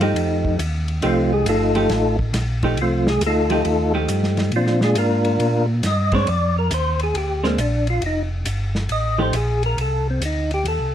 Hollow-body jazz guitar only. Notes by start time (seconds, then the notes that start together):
0.01 F3 A3 D#4 G4
1.03 F3 A3 D#4 G4
1.75 F3 A3 D#4 G4
2.63 F3 A3 D#4 G4
3.50 F3 A3 D#4 G4
3.94 F3 A3 D#4 G4
6.13 G#3 C4 D4
7.44 G#3 C4 D4
9.18 F3 A3 D#4 G4